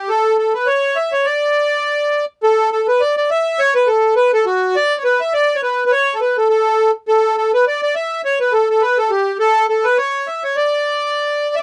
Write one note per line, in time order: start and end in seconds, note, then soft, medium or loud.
0.09 0.37 A4 loud
0.38 0.53 A4 medium
0.54 0.68 B4 medium
0.66 0.97 C#5 medium
0.96 1.13 E5 medium
1.12 1.26 C#5 medium
1.25 2.25 D5 medium
2.43 2.70 A4 loud
2.72 2.87 A4 medium
2.88 3.01 B4 medium
3.01 3.16 D5 loud
3.17 3.30 D5 medium
3.31 3.60 E5 medium
3.59 3.74 C#5 loud
3.75 3.88 B4 loud
3.87 4.14 A4 medium
4.16 4.31 B4 loud
4.34 4.45 A4 loud
4.46 4.76 F#4 medium
4.76 4.98 D5 loud
4.98 5.03 C#5 medium
5.04 5.20 B4 loud
5.20 5.33 E5 medium
5.34 5.56 D5 loud
5.56 5.61 C#5 medium
5.63 5.84 B4 medium
5.86 5.91 B4 medium
5.92 6.14 C#5 loud
6.14 6.20 A4 medium
6.21 6.37 B4 medium
6.37 6.48 A4 medium
6.49 6.91 A4 loud
7.08 7.36 A4 loud
7.37 7.52 A4 medium
7.54 7.65 B4 medium
7.67 7.81 D5 loud
7.83 7.95 D5 loud
7.95 8.22 E5 medium
8.25 8.39 C#5 loud
8.40 8.53 B4 medium
8.52 8.69 A4 medium
8.70 8.82 A4 medium
8.81 8.98 B4 medium
8.98 9.11 A4 medium
9.10 9.37 G4 medium
9.40 9.66 A4 loud
9.69 9.85 A4 medium
9.84 9.98 B4 medium
9.98 10.28 C#5 loud
10.27 10.44 E5 medium
10.44 10.57 C#5 medium
10.56 11.55 D5 medium
11.55 11.63 D5 loud
11.55 11.59 E5 medium